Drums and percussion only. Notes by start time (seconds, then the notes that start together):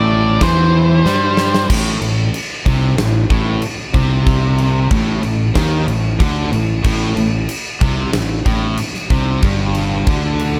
0.41 kick, snare, crash
1.06 snare
1.37 snare
1.55 snare
1.70 kick, crash
2.02 crash
2.34 crash
2.66 kick, crash
2.98 snare, crash
3.30 kick, crash
3.62 crash
3.94 kick, crash
4.26 kick, crash
4.58 crash
4.91 kick, crash
5.23 crash
5.55 kick, snare, crash
5.88 crash
6.20 kick, crash
6.53 crash
6.84 kick, crash
7.17 crash
7.49 crash
7.81 kick, crash
8.13 snare, crash
8.46 kick, crash
8.77 crash
8.94 snare
9.10 kick, crash
9.42 kick, crash
9.75 crash
10.07 kick, crash
10.39 crash